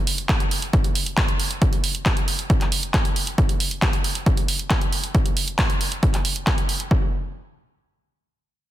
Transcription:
0.07 open hi-hat
0.18 closed hi-hat
0.29 kick, clap, closed hi-hat
0.40 closed hi-hat
0.51 open hi-hat
0.62 closed hi-hat
0.73 kick, closed hi-hat
0.84 closed hi-hat
0.95 open hi-hat
1.06 closed hi-hat
1.17 kick, clap, closed hi-hat
1.29 closed hi-hat
1.40 open hi-hat
1.51 closed hi-hat
1.62 kick, closed hi-hat
1.73 closed hi-hat
1.84 open hi-hat
1.95 closed hi-hat
2.06 kick, clap, closed hi-hat
2.17 closed hi-hat
2.28 open hi-hat
2.39 closed hi-hat
2.50 kick, closed hi-hat
2.61 clap, closed hi-hat
2.72 open hi-hat
2.83 closed hi-hat
2.94 kick, clap, closed hi-hat
3.05 closed hi-hat
3.16 open hi-hat
3.27 closed hi-hat
3.38 kick, closed hi-hat
3.49 closed hi-hat
3.60 open hi-hat
3.71 closed hi-hat
3.82 kick, clap, closed hi-hat
3.93 closed hi-hat
4.04 open hi-hat
4.15 closed hi-hat
4.26 kick, closed hi-hat
4.37 closed hi-hat
4.48 open hi-hat
4.59 closed hi-hat
4.70 kick, clap, closed hi-hat
4.82 closed hi-hat
4.92 open hi-hat
5.04 closed hi-hat
5.15 kick, closed hi-hat
5.26 closed hi-hat
5.37 open hi-hat
5.48 closed hi-hat
5.59 kick, clap, closed hi-hat
5.70 closed hi-hat
5.81 open hi-hat
5.92 closed hi-hat
6.03 kick, closed hi-hat
6.14 clap, closed hi-hat
6.25 open hi-hat
6.36 closed hi-hat
6.47 kick, clap, closed hi-hat
6.58 closed hi-hat
6.69 open hi-hat
6.80 closed hi-hat
6.91 kick

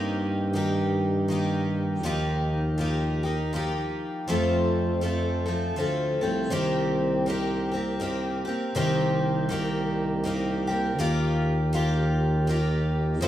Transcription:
Already playing: G2 C3 D#3 A#3 D#4 G4
0.53 D#3 A#3 D#4 G4
1.28 D#3 A#3 D#4 G4
2.03 D#2 D#3 F3 A#3 D#4 G4
2.78 F3 A#3 D#4 G4
3.23 A#3 D#4 G4
3.53 F3 A#3 D#4 G4
4.27 F2 C3 F3 A3 C4 A4
5.01 F3 A3 C4 A4
5.46 F3 A3 C4 A4
5.76 D2 F3 A3 C4 A4
6.21 C2 F3 A3 C4 A4
6.50 C2 C3 D#3 A#3 C4 G4
7.26 D#3 A#3 C4 G4
7.72 A#3 C4 G4
8.00 D#3 A#3 C4 G4
8.45 A#3 C4 G4
8.74 C2 C3 D#3 A#3 C4 G4
9.49 D#3 A#3 C4 G4
10.24 D#3 A#3 C4 G4
10.67 A#3 C4 G4
10.98 D#2 D#3 A#3 F4 G4
11.73 D#3 A#3 F4 G4
12.47 D#3 A#3 F4 G4
13.21 F2 C3 F3 A3 C4 A4

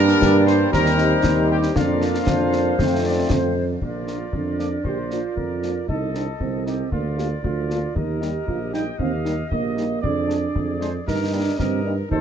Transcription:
Already playing: G2 G3 A#3 D4 G4 A#4 D5 A#5
0.08 snare
0.21 G2, concert bass drum, snare
0.47 C5 C6, snare
0.71 D#2 G3 C4 D#4 G4 A#4 C5 A#5, concert bass drum, snare
0.86 snare
0.98 snare
1.23 D#2, concert bass drum, snare
1.51 G4 G5
1.63 snare
1.75 F2 F3 A#3 D4 F4 A#4 D5 F5, concert bass drum, snare
2.02 snare
2.15 snare
2.27 F2 C5, concert bass drum, snare
2.53 snare
2.77 F2 F3 A3 C4, concert bass drum, snare
3.04 D5
3.30 F2 C5, concert bass drum, snare
3.82 A#1 F4 A#4 D5, concert bass drum
4.07 F3 A#3 D4, snare
4.33 F2 D4, concert bass drum
4.59 F3 A#3 D4 D5, snare
4.84 A#1 G4 C5, concert bass drum
5.11 F3 A#3 D4 F4, snare
5.36 F2 A#4, concert bass drum
5.63 F3 A#3 D4, snare
5.88 C2 D#4 A4 D#5, concert bass drum
6.14 C4 D4 D#4, snare
6.39 C2 C4, concert bass drum
6.66 C4 D#4 G4, snare
6.91 D2 A#3 F4 A#4 D5, concert bass drum
7.17 A#3 D4 F4 G4, snare
7.43 D2 F4, concert bass drum
7.70 A#3 D4 F4, snare
7.95 D#2 D#4 G4 A#4 D#5, concert bass drum
8.21 G3 A#3 D#4 G4, snare
8.46 A#1 F4, concert bass drum
8.73 G3 A#3 D#4 G5, snare
8.99 D#2 C4 F5, concert bass drum
9.25 G3 A#3 D#4, snare
9.50 A#1 A#3 D#5, concert bass drum
9.77 G3 A#3 D#4, snare
10.02 F2 D4 G#4 D5, concert bass drum
10.28 G#3 D4, snare
10.56 F2, concert bass drum
10.80 G#3 D4 C5, snare
11.07 G2 D#4 G4 A#4 D#5, concert bass drum, snare
11.32 G3 A#3 D4 D#4
11.59 G2 C4 A#4, concert bass drum, snare
11.83 G3 A#3 D4 D#4
12.10 D#2 D#4 F4 A4 C5, concert bass drum

